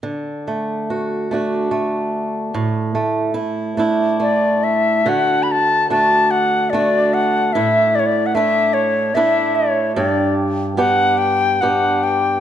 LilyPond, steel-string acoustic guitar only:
\new Staff \with { instrumentName = "Steel-string acoustic guitar" } { \time 3/4 \key d \major \tempo 4 = 73 d8 a8 fis'8 <a d' fis'>8 a4 | a,8 a8 e'8 <a d' e'>8 a4 | <d fis'>4 <a d' fis'>4 <a d' fis'>4 | <a, e'>4 <a d' e'>4 <a d' e'>4 |
<g, g'>4 <b d' g'>4 <b d' g'>4 | }